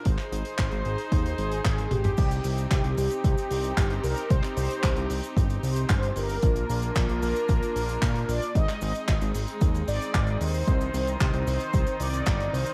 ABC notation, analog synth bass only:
X:1
M:4/4
L:1/16
Q:1/4=113
K:Cm
V:1 name="Analog synth bass" clef=bass
A,,, z A,,, z A,,, A,,, A,,, z E,,2 A,,,2 A,,,2 A,,,2 | C,,2 C,,2 C,, C,, C,, z C,, z C,,2 G,,,2 C,, z | C,, z C,, z C,, C,, C,, z G,,,2 C,,2 G,,,2 G,,,2 | B,,,2 B,,,2 B,,, B,,, B,,, z B,,, z B,,,2 B,,2 B,,, z |
A,,, z A,,, z A,,, A,,, A,,, z E,,2 A,,, z A,,,2 E,,2 | C,,2 C,,2 C,, C,, C,, z C,, z C,,2 G,,,2 C,, z |]